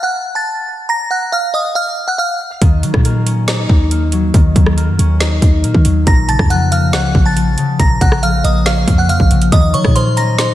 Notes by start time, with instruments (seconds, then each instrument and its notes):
0.03 synth bell F#5 F#6
0.35 synth bell A5 A6
0.89 synth bell A#5 A#6
1.11 synth bell F#5 F#6
1.32 synth bell F5 F6
1.54 synth bell D#5 D#6
1.75 synth bell F5 F6
2.08 synth bell F#5 F#6
2.18 synth bell F5 F6
2.62 808-style bass D#2, harp D#3, kick, closed hi-hat
2.83 808-style bass D#3, harp F#3, closed hi-hat
2.94 808-style bass A#2, kick, cross-stick
3.05 harp A#3, closed hi-hat
3.26 harp C#4, closed hi-hat
3.48 harp D#4, snare, closed hi-hat
3.69 808-style bass D#2, kick
3.91 harp A#3, closed hi-hat
4.12 harp F#3, closed hi-hat
4.34 808-style bass D#2, harp D#3, kick, closed hi-hat
4.56 808-style bass D#2, harp F#3, kick, closed hi-hat
4.66 cross-stick
4.77 harp A#3, closed hi-hat
4.88 808-style bass F#2
4.99 808-style bass D#2, harp C#4, closed hi-hat
5.20 harp D#4, snare, closed hi-hat
5.42 808-style bass D#2, kick, closed hi-hat
5.64 808-style bass A#2, harp A#3, closed hi-hat
5.74 808-style bass D#3, kick
5.85 808-style bass D#2, harp F#3, closed hi-hat
6.07 808-style bass A#1, harp A#2, synth bell A#5 A#6, kick, closed hi-hat
6.29 harp C#3, synth bell A5 A6, closed hi-hat
6.39 808-style bass F2, kick, cross-stick
6.50 harp F3, synth bell F#5 F#6, closed hi-hat
6.72 harp A#3, synth bell F5 F6, closed hi-hat
6.93 808-style bass C#2, harp C#4, synth bell F#5 F#6, snare, closed hi-hat
7.15 808-style bass A#1, kick
7.26 synth bell A5 A6
7.36 harp F3, closed hi-hat
7.58 harp C#3, closed hi-hat
7.79 808-style bass A#1, harp A#2, synth bell A#5 A#6, kick, closed hi-hat
8.01 808-style bass A#1, harp C#3, synth bell F#5 F#6, kick, closed hi-hat
8.12 cross-stick
8.23 harp F3, synth bell F5 F6, closed hi-hat
8.44 808-style bass A#1, harp A#3, synth bell D#5 D#6, closed hi-hat
8.66 harp C#4, synth bell F5 F6, snare, closed hi-hat
8.88 808-style bass F2, kick, closed hi-hat
8.98 synth bell F#5 F#6
9.09 harp F3, synth bell F5 F6, closed hi-hat
9.20 808-style bass A#1, kick
9.31 808-style bass A#1, harp C#3, closed hi-hat
9.42 closed hi-hat
9.52 808-style bass D#2, harp D#3, synth bell D#5 D#6, kick, closed hi-hat
9.74 808-style bass D#3, harp F#3, synth bell C#5 C#6, closed hi-hat
9.85 808-style bass A#2, kick, cross-stick
9.96 harp A#3, synth bell C5 C6, closed hi-hat
10.17 harp C#4, synth bell A#5 A#6, closed hi-hat
10.38 harp D#4, synth bell C5 C6, snare, closed hi-hat